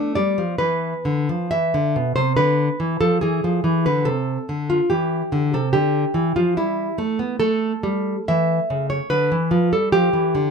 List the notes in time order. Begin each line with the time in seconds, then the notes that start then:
Already playing: A3 D4
0.15 G3 D5
0.38 F3
0.58 E3 B4
1.05 D3
1.29 F3
1.51 E3 E5
1.74 D3
1.96 B2
2.16 C3 C5
2.37 D3 B4
2.80 E3
3.01 F3 A4
3.21 E3 G#4
3.44 F3
3.64 E3
3.86 D3 B4
4.05 C3 A4
4.49 D3
4.70 F4
4.90 E3 G4
5.32 D3
5.54 C3 A4
5.73 D3 G4
6.14 E3
6.36 F3 F4
6.57 G3 E4
6.98 A3
7.19 B3
7.40 A3 A4
7.83 G3
8.28 E3 E5
8.70 C#3
8.90 C#5
9.10 D3 B4
9.32 E3
9.51 F3
9.72 G3 A4
9.92 F3 G4
10.13 E3
10.35 D3